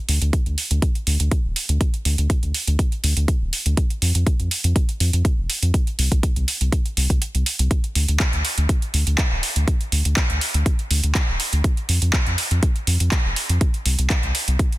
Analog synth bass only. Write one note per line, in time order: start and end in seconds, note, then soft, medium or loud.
0.09 0.19 D2 medium
0.22 0.31 D2 medium
0.46 0.55 D2 medium
0.71 0.80 D2 medium
1.07 1.17 D2 medium
1.20 1.29 D2 medium
1.44 1.54 D1 medium
1.69 1.78 D2 medium
2.05 2.16 D2 medium
2.18 2.28 D2 medium
2.43 2.52 D2 medium
2.67 2.77 D2 medium
3.04 3.14 D2 medium
3.17 3.26 D2 medium
3.41 3.50 D1 medium
3.66 3.75 D2 medium
4.02 4.12 F2 medium
4.15 4.24 F2 medium
4.40 4.49 F2 medium
4.64 4.73 F2 medium
5.00 5.11 F2 medium
5.13 5.23 F2 medium
5.38 5.47 F1 medium
5.62 5.72 F2 medium
5.99 6.09 C2 medium
6.12 6.21 C2 medium
6.36 6.46 C2 medium
6.61 6.70 C2 medium
6.97 7.07 C2 medium
7.10 7.19 C2 medium
7.35 7.44 C2 medium
7.59 7.68 C2 medium
7.95 8.06 D2 medium
8.08 8.18 D2 medium
8.33 8.42 D2 medium
8.58 8.67 D2 medium
8.94 9.04 D2 medium
9.07 9.16 D2 medium
9.31 9.41 D1 medium
9.56 9.65 D2 medium
9.92 10.03 D2 medium
10.05 10.14 D2 medium
10.30 10.39 D2 medium
10.54 10.64 D2 medium
10.90 11.01 D2 medium
11.04 11.13 D2 medium
11.28 11.37 D1 medium
11.53 11.62 D2 medium
11.89 11.99 F2 medium
12.02 12.11 F2 medium
12.27 12.36 F2 medium
12.51 12.60 F2 medium
12.87 12.98 F2 medium
13.00 13.09 F2 medium
13.25 13.34 F1 medium
13.49 13.59 F2 medium
13.86 13.96 C2 medium
13.99 14.08 C2 medium
14.23 14.32 C2 medium
14.48 14.57 C2 medium